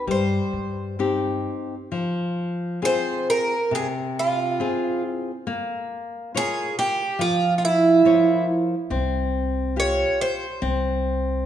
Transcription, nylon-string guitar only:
0.07 0.97 G3 medium
0.99 1.73 C4 soft
0.99 1.74 D#4 soft
0.99 1.74 G4 medium
1.92 2.79 F3 medium
2.82 3.54 C4 soft
2.82 3.54 F4 soft
2.82 3.54 G#4 soft
3.71 4.58 C3 medium
4.60 5.30 C4 medium
4.60 5.30 F4 soft
4.60 5.31 G#4 medium
5.47 6.31 A#3 medium
6.34 7.02 F4 soft
6.34 7.02 A#4 soft
6.34 7.03 C#5 medium
7.19 8.01 F3 medium
8.05 8.74 F3 medium
8.05 8.74 A#4 soft
8.05 8.74 C#5 medium
8.91 9.74 C4 medium
9.76 10.45 F4 soft
9.76 10.45 G4 soft
10.62 11.45 C4 medium

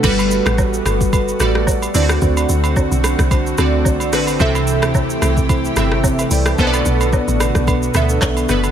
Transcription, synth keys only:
0.03 0.91 G3 loud
0.03 0.92 F#4 loud
0.03 0.92 A4 loud
0.03 0.92 B4 loud
1.40 1.94 G3 medium
1.40 1.95 F#4 medium
1.40 1.95 A4 medium
1.40 1.95 D5 loud
1.94 2.82 D3 loud
1.94 2.83 C4 medium
1.94 2.02 E4 medium
1.94 2.83 D5 loud
2.02 2.86 F#4 medium
3.58 4.03 D3 medium
3.58 4.03 C4 medium
3.58 4.04 F#4 medium
3.58 4.04 D5 loud
4.12 4.35 D3 medium
4.12 4.35 C4 medium
4.12 4.36 F#4 medium
4.12 4.36 B4 loud
4.39 5.28 C3 loud
4.39 5.28 C4 loud
4.39 5.28 A4 loud
4.39 5.29 E5 loud
5.76 6.43 C3 medium
5.76 6.43 C4 medium
5.76 6.44 A4 medium
5.76 6.05 E5 loud
6.20 6.31 B4 medium
6.20 6.31 E5 medium
6.32 6.46 D5 medium
6.32 6.46 G5 medium
6.47 6.73 E5 medium
6.47 6.72 A5 medium
6.58 7.46 B2 loud
6.58 7.47 B3 loud
6.58 7.47 A4 loud
6.58 6.67 C5 loud
6.67 7.50 D5 loud
7.94 8.39 B2 medium
7.94 8.40 B3 medium
7.94 8.40 A4 medium
7.94 8.40 E5 loud
8.49 8.71 B2 medium
8.49 8.71 B3 medium
8.49 8.71 A4 medium
8.49 8.71 B4 loud

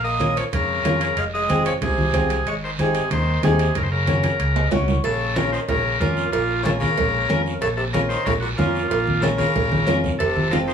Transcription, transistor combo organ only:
0.04 0.37 D#5 medium
0.37 0.44 C#5 medium
0.54 1.20 A#4 medium
1.18 1.25 F5 loud
1.34 1.63 D#5 medium
1.66 1.73 C#5 medium
1.83 2.49 G#4 medium
2.48 2.55 C#5 medium
2.64 2.71 C5 medium
2.80 3.09 G#4 medium
3.13 3.42 C5 loud
3.45 3.77 G#4 medium
3.77 3.83 A#4 medium
3.83 3.90 C5 medium
3.92 4.69 A#4 medium
5.04 5.37 A4 loud
5.36 5.51 A#4 medium
5.52 5.60 C5 medium
5.69 5.99 A#4 loud
6.00 6.31 F4 medium
6.32 6.63 F4 medium
6.65 6.72 A4 medium
6.81 7.42 A#4 loud
7.62 7.69 A4 loud
7.77 7.84 A4 medium
7.93 8.01 A#4 medium
8.09 8.26 C5 medium
8.25 8.33 A#4 loud
8.40 8.48 F#4 medium
8.58 8.87 F4 medium
8.88 9.23 F4 medium
9.21 9.29 A4 medium
9.38 9.99 A#4 medium
10.19 10.53 A4 loud
10.51 10.58 A#4 medium
10.68 10.74 C5 medium

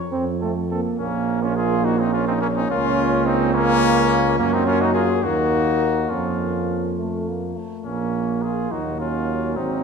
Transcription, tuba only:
0.11 0.85 F2 medium
1.00 2.66 A#1 medium
2.70 4.41 C#2 medium
4.40 5.23 F#2 medium
5.24 6.09 D#2 medium
6.11 7.54 F2 medium
7.85 8.67 A#1 medium
8.72 9.58 D#2 medium
9.56 9.83 G#1 medium

